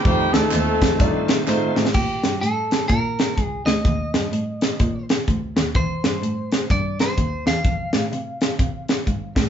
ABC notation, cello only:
X:1
M:4/4
L:1/8
Q:"Swing" 1/4=126
K:Fmix
V:1 name="Cello" clef=bass
F,, D,, E,, F,, G,,2 A,, A,, | B,, G,, A,,2 B,,2 _D,, =D,, | E,, G,, A,,2 B,,2 D,, E,, | =E,, G,, A,,2 G,,2 _E,, =E,, |
F,, A,, C,2 C,2 _A,, =A,, |]